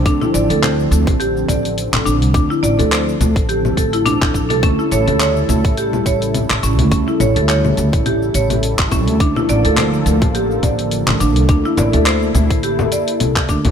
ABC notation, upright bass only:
X:1
M:4/4
L:1/16
Q:"Swing 16ths" 1/4=105
K:Dm
V:1 name="Upright bass" clef=bass
D,, z A,,, D,,3 D,, A,,,3 A,,,3 A,,, A,,, C,, | D,, z A,,, D,,3 D,, A,,,3 A,,,3 A,,, A,,, C,, | D,, z A,,, D,,3 D,, A,,,3 A,,,3 A,,, A,,, D,, | D,, z A,,, D,,3 D,, A,,,3 A,,,3 A,,, A,,, D,, |
D,, z A,,, D,,3 D,, A,,,3 A,,,3 A,,, A,,, C,, | D,, z A,,, D,,3 D,, A,,,3 z2 C,,2 D,, D,, |]